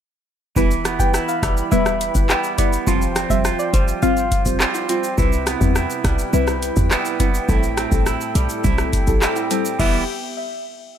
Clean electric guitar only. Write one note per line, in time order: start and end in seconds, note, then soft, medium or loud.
0.56 2.87 E3 medium
0.56 1.13 E4 medium
0.85 2.29 B3 medium
1.14 1.71 E4 medium
1.43 2.29 G3 medium
1.72 2.29 E4 medium
2.30 3.48 G3 medium
2.30 2.57 B3 medium
2.30 2.87 E4 medium
2.58 2.93 B3 medium
2.87 5.18 F3 medium
2.87 3.44 F4 medium
3.16 4.61 C4 medium
3.45 4.01 F4 medium
3.74 4.60 G3 medium
4.03 4.60 F4 medium
4.60 6.04 G3 medium
4.60 4.89 C4 medium
4.60 5.18 F4 medium
4.89 5.46 C4 medium
5.18 7.49 C3 medium
5.18 5.75 E4 medium
5.47 6.90 B3 medium
5.76 6.33 E4 medium
6.05 6.91 G3 medium
6.33 6.92 E4 medium
6.91 8.35 G3 medium
6.91 7.19 B3 medium
6.91 7.49 E4 medium
7.20 7.55 B3 medium
7.49 9.80 A2 medium
7.49 8.06 E4 medium
7.78 9.21 C4 medium
8.06 8.64 E4 medium
8.35 9.21 G3 medium
8.64 9.23 E4 medium
9.22 9.79 G3 medium
9.22 9.49 C4 medium
9.22 9.81 E4 medium
9.51 9.80 C4 medium
9.79 10.02 E3 medium
9.79 10.03 G3 medium
9.79 10.03 B3 medium
9.79 10.03 E4 loud